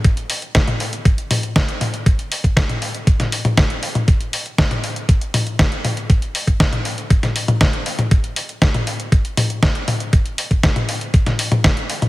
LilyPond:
\new DrumStaff \with { instrumentName = "Drums" } \drummode { \time 4/4 \tempo 4 = 119 <hh bd>16 hh16 hho16 hh16 <hh bd sn>16 <hh tommh>16 hho16 hh16 <hh bd>16 hh16 <hho tommh>16 hh16 <hh bd sn>16 hh16 <hho tommh>16 hh16 | <hh bd>16 hh16 hho16 <hh bd>16 <hh bd sn>16 <hh tommh>16 hho16 hh16 <hh bd>16 <hh sn tommh>16 hho16 <hh tommh>16 <hh bd sn>16 hh16 hho16 <hh tommh>16 | <hh bd>16 hh16 hho16 hh16 <hh bd sn>16 <hh tommh>16 hho16 hh16 <hh bd>16 hh16 <hho tommh>16 hh16 <hh bd sn>16 hh16 <hho tommh>16 hh16 | <hh bd>16 hh16 hho16 <hh bd>16 <hh bd sn>16 <hh tommh>16 hho16 hh16 <hh bd>16 <hh sn tommh>16 hho16 <hh tommh>16 <hh bd sn>16 hh16 hho16 <hh tommh>16 |
<hh bd>16 hh16 hho16 hh16 <hh bd sn>16 <hh tommh>16 hho16 hh16 <hh bd>16 hh16 <hho tommh>16 hh16 <hh bd sn>16 hh16 <hho tommh>16 hh16 | <hh bd>16 hh16 hho16 <hh bd>16 <hh bd sn>16 <hh tommh>16 hho16 hh16 <hh bd>16 <hh sn tommh>16 hho16 <hh tommh>16 <hh bd sn>16 hh16 hho16 <hh tommh>16 | }